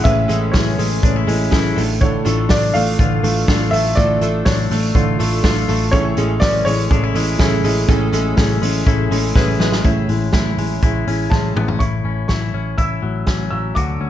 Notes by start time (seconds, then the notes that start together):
Already playing: G#3 C#4 E4 G#4 A4
0.04 A1 A2 A3 C#4 E4 G#4 B4 E5, kick, hi-hat pedal, open hi-hat
0.28 A1 G#3 C#4 E4 G#4 A4, hi-hat pedal, open hi-hat
0.52 A1 A3 C#4 G#4 A4 C#5, kick, snare, hi-hat pedal, open hi-hat
0.56 E4 G#4
0.78 A1 G#3 C#4 E4 G#4 A4, hi-hat pedal, open hi-hat
1.03 A1 A3 C#4 D4 E4 G#4 B4, kick, hi-hat pedal, open hi-hat
1.16 E4
1.27 A1 G#3 C#4 E4 G#4 A4, hi-hat pedal, open hi-hat
1.51 A1 A3 C#4 E4 G#4 A4, kick, snare, hi-hat pedal, open hi-hat
1.75 A1 A2 A3 D4 F4 A4, hi-hat pedal, open hi-hat
2.01 A2 D3 A3 D4 F4 A4 C#5, kick, hi-hat pedal, open hi-hat
2.25 A1 A3 D4 F4 A4, hi-hat pedal, open hi-hat
2.49 A1 A3 D4 F4 A4 D5, kick, snare, hi-hat pedal, open hi-hat
2.53 F4 A4
2.73 A1 A3 D4 F4 A4 F5, hi-hat pedal, open hi-hat
2.77 A3
2.98 A1 A2 D3 A3 D4 F4 A4 B4, kick, hi-hat pedal, open hi-hat
3.23 A1 A3 D4 F4 A4, hi-hat pedal, open hi-hat
3.48 A1 A3 D4 F4 A4, kick, snare, hi-hat pedal, open hi-hat
3.71 A1 A3 D4 F4 A4 E5, hi-hat pedal, open hi-hat
3.75 A3
3.95 A1 A2 D3 A3 D4 F4 A4 D5, kick, hi-hat pedal, open hi-hat
4.21 A1 A3 D4 F4 A4, hi-hat pedal, open hi-hat
4.45 A1 A3 D4 F4 A4 C#5, kick, snare, hi-hat pedal, open hi-hat
4.70 A1 A3 D4 F4 A4, hi-hat pedal, open hi-hat
4.94 A1 A2 D3 A3 D4 F4 A4, kick, hi-hat pedal, open hi-hat
5.19 A1 A3 D4 F4 A4, hi-hat pedal, open hi-hat
5.44 A1 A3 D4 F4 A4, kick, snare, hi-hat pedal, open hi-hat
5.68 A1 A3 D4 F4 A4, hi-hat pedal, open hi-hat
5.91 A1 A2 A3 C#4 E4 G#4 A4 C#5, kick, hi-hat pedal, open hi-hat
5.96 G#4
6.17 A1 G#3 C#4 E4 G#4 A4, hi-hat pedal, open hi-hat
6.21 C#4
6.40 A1 A3 C#4 G#4 B4 D5, kick, snare, hi-hat pedal, open hi-hat
6.44 E4 G#4
6.65 A1 G#3 C#4 E4 G#4 A4 C#5, hi-hat pedal, open hi-hat
6.69 C#4
6.90 A1 A3 C#4 D4 E4 G#4 A4, kick, hi-hat pedal, open hi-hat
7.04 E4
7.14 A1 G#3 C#4 E4 G#4 A4, hi-hat pedal, open hi-hat
7.18 C#4
7.39 A1 A3 C#4 E4 G#4 A4, kick, snare, hi-hat pedal, open hi-hat
7.63 A1 G#3 C#4 E4 G#4 A4, hi-hat pedal, open hi-hat
7.68 C#4
7.88 A1 A2 A3 C#4 E4 G#4 A4, kick, hi-hat pedal, open hi-hat
8.12 A1 G#3 C#4 G#4 A4, hi-hat pedal, open hi-hat
8.17 C#4
8.37 A1 A3 C#4 E4 G#4 A4, kick, snare, hi-hat pedal, open hi-hat
8.62 A1 G#3 C#4 E4 G#4 A4, hi-hat pedal, open hi-hat
8.86 A1 A3 C#4 E4 G#4 A4, kick, hi-hat pedal, open hi-hat
9.11 A1 G#3 C#4 E4 G#4 A4, hi-hat pedal, open hi-hat
9.35 A1 A3 C#4 E4 G#4 B4, kick, snare
9.59 A1 G#3 C#4 E4 G#4 B4, snare
9.63 C#4
9.72 snare
9.84 A1 A2 A3 C#4 E4 G#4, kick, closed hi-hat
10.08 A1 G#3 C#4 E4 G#4, open hi-hat
10.33 A1 A3 C#4 E4, kick, snare, closed hi-hat
10.37 G#4
10.57 A1 G#3 C#4 E4 G#4, open hi-hat
10.82 A1 A3 C#4 E4 G#4, kick, closed hi-hat
11.07 A1 C#4 E4 G#4, open hi-hat
11.30 A1 G#3 A3 C#4 E4 G#4 A5, kick, snare
11.56 A1 B3 C#4 E4 G#4, mid tom
11.68 C#4, floor tom
11.79 A1 A2 E4 C#6, kick, closed hi-hat
12.04 A1 C#4
12.28 A1 E4 C#6, kick, snare, closed hi-hat
12.54 A1 C#4
12.78 A1 E4 E6, kick, closed hi-hat
13.02 A1 F#3
13.27 A1 C#4, kick, snare, closed hi-hat
13.51 A1 F#3 E6
13.75 D2 D3 F#4 D6, kick, closed hi-hat
14.00 D2 C#4